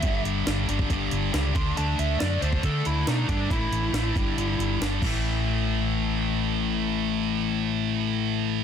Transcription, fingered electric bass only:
X:1
M:4/4
L:1/8
Q:1/4=139
K:Glyd
V:1 name="Fingered electric bass" clef=bass
G,,, G,,, G,,, G,,, G,,, G,,, C,, D,, | D,, D,, F,, D,, D, D,, B,, G,, | A,,, A,,, A,,, G,,, G,,, G,,, G,,, A,,,- | A,,,8- |
A,,,8 |]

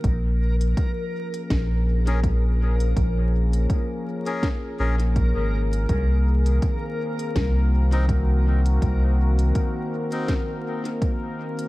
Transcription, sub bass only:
X:1
M:4/4
L:1/16
Q:"Swing 16ths" 1/4=82
K:Bbm
V:1 name="Sub bass" clef=bass
B,,,4 z4 B,,,8 | B,,,4 z6 B,,,3 A,,,3 | C,,4 z4 C,,8 | C,,4 z12 |]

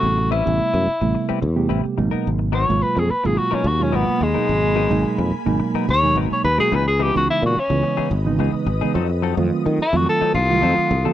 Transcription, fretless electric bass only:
X:1
M:4/4
L:1/16
Q:"Swing 16ths" 1/4=108
K:G#m
V:1 name="Fretless electric bass" clef=bass
=A,,,3 A,,, z F,, z A,,, z2 E,,2 A,,, z G,,, z | G,,,3 G,,, z ^E,, z G,,, z2 D,,2 G,,, z D,, z | G,,,3 G,,, z ^E,, z G,,, z2 D,,2 G,,, z D,, z | C,,3 C,, z A,, z C,, z2 G,,,2 C,, z G,,, z |
=F,,3 F,, z _E, z F,, z2 =C,,2 F,, z C,, z |]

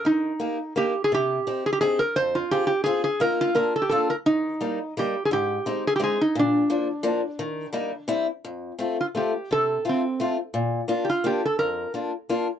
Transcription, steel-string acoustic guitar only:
X:1
M:3/4
L:1/8
Q:"Swing" 1/4=172
K:Eb
V:1 name="Steel-string acoustic guitar"
E,2 [B,EG] z [B,EG] z | C,2 [CEG] z [CEG] z | F,,2 [CFA] z [CFA] z | [B,EF]2 [B,DF] z [B,DF] z |
E,2 [G,B,E] z [G,B,E] z | A,,2 [A,CE] z [A,CE] z | B,,2 [F,B,D] z [F,B,D] z | E,2 [G,B,E] z [G,C=E] z |
[K:F] F,,2 [A,CF] z [A,CF] z | C,2 [A,CF] z [A,CF] z | B,,2 [B,DF] z [B,DF] z | F,,2 [B,DF] z [B,DF] z |]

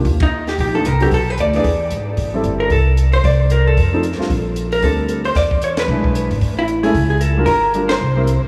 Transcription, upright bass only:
X:1
M:4/4
L:1/8
Q:"Swing" 1/4=226
K:Aphr
V:1 name="Upright bass" clef=bass
_E,,4 B,,,2 C,,2 | =B,,,2 D,,2 E,,2 ^G,,,2 | A,,,2 G,,,2 C,,4 | C,,4 F,,3 z |
B,,,4 D,,4 | E,,4 =B,,,3 ^G,,, | A,,,4 ^C,,4 | G,,,4 C,,3 z |]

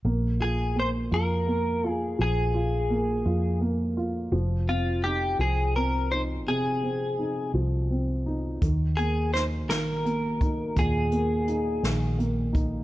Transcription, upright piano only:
X:1
M:6/8
L:1/8
Q:3/8=56
K:Bbdor
V:1 name="Upright piano"
B, F B, F B, F | F, F B, F B, F | F, C E F, C E | C, C E F, C E |
E, B, E E, B, E | B,, B, E E, B, E |]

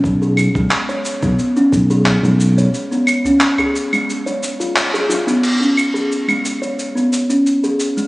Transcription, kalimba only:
X:1
M:4/4
L:1/16
Q:1/4=89
K:Dbmix
V:1 name="Kalimba"
z A2 A,2 d2 C z D2 A2 A,2 d- | d C z D2 A2 A,2 d z F z A F C | z D2 A2 A,2 d2 C z D2 A2 A, |]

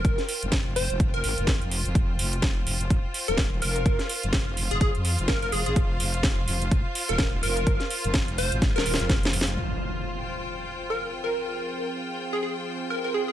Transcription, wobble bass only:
X:1
M:4/4
L:1/16
Q:"Swing 16ths" 1/4=126
K:Fm
V:1 name="Wobble bass" clef=bass
F,,, z2 F,,,4 F,,,3 A,,, F,,,4 F,,, | F,,,4 F,,,2 F,,,3 z2 E,,,3 F,,,2- | F,,, z2 F,,,4 F,,,2 F,,2 F,,,3 F,,, A,,, | F,,,4 F,,,2 F,,,3 z2 E,,,3 F,,,2- |
F,,, z2 F,,,4 A,,,2 E,,,2 F,,, F,,,4 | z16 | z16 |]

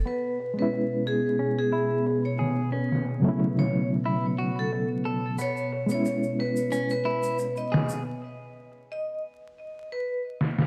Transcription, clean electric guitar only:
X:1
M:4/4
L:1/8
Q:"Swing 16ths" 1/4=90
K:C#m
V:1 name="Clean electric guitar"
B, z3 C E z G | C z3 E F z A | B, z3 C E z G | z8 |]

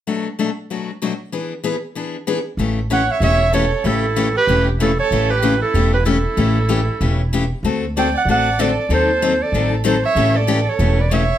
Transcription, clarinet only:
X:1
M:4/4
L:1/8
Q:"Swing" 1/4=190
K:Amix
V:1 name="Clarinet"
z8 | z8 | z2 f e e2 c2 | A3 B2 z A c- |
c B2 A2 B A2- | A6 z2 | z2 g f f2 d2 | ^B3 d2 z B e- |
e d2 c2 d e2 |]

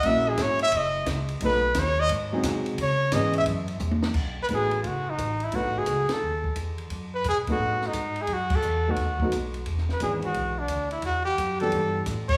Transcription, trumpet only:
X:1
M:4/4
L:1/16
Q:"Swing" 1/4=174
K:Bmix
V:1 name="Trumpet"
e2 G2 c2 e2 d4 z4 | B4 c2 d2 z8 | c4 d2 e2 z8 | z2 B2 G3- G/2 ^E/2 F2 D4 =E2 |
F2 G4 A6 z4 | z2 B2 G2 F4 D4 G2 | F2 A4 F6 z4 | z2 B2 G2 F4 =D4 E2 |
F2 =G4 A6 z2 c2 |]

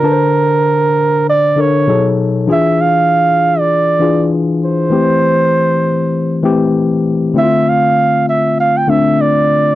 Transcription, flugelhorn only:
X:1
M:4/4
L:1/16
Q:"Swing 16ths" 1/4=98
K:Dm
V:1 name="Flugelhorn"
B8 d2 ^c4 z2 | e2 f4- f d4- d z2 c2- | c8- c2 z6 | e2 f4 e2 f g e2 d4 |]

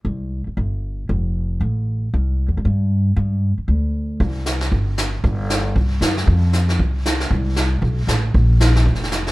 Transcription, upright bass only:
X:1
M:4/4
L:1/8
Q:"Swing" 1/4=232
K:Flyd
V:1 name="Upright bass" clef=bass
C,,3 z G,,,4 | F,,,4 A,,,4 | C,,2- (3C,, E,, G,, G,,4 | G,,3 z D,,4 |
C,,4 G,,,4 | G,,,4 C,,2 ^F,,2 | F,,4 C,,4 | C,,4 B,,,2 A,,,2 |
_B,,,4 F,,,4 |]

